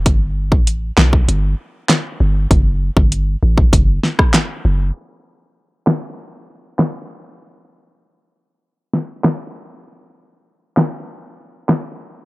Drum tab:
HH |x---x---x---x---|x---x---x---x---|----------------|----------------|
CP |------x-----x---|------------x---|------x-----x---|------------x---|
SD |------o-----o---|----------oro---|------o-----o---|----------o-o---|
BD |o--o---o--------|o--o---oo--o----|----------------|----------------|

HH |----------------|
CP |------x-----x---|
SD |------o-----o---|
BD |----------------|